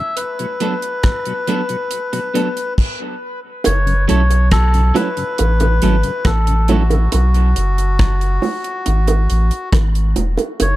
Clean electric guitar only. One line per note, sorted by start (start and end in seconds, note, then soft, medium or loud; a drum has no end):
0.61 0.73 F#3 medium
0.61 0.73 B3 medium
0.61 0.73 D4 medium
0.61 0.74 A4 medium
1.48 1.60 F#3 medium
1.48 1.60 B3 medium
1.48 1.61 D4 medium
1.48 1.61 A4 medium
2.13 muted clean electric guitar stroke soft
2.35 2.47 F#3 medium
2.35 2.47 B3 medium
2.35 2.47 D4 medium
2.35 2.48 A4 medium
4.08 4.21 F#3 medium
4.08 4.21 C#4 loud
4.08 4.21 E4 medium
4.08 4.21 A4 medium
4.95 5.07 F#3 medium
4.95 5.08 C#4 medium
4.95 5.08 E4 medium
4.95 5.08 A4 medium
5.82 5.95 F#3 medium
5.82 5.95 C#4 medium
5.82 5.95 E4 medium
5.82 5.95 A4 medium
6.69 6.81 F#3 medium
6.69 6.82 C#4 medium
6.69 6.82 E4 medium
6.69 6.82 A4 medium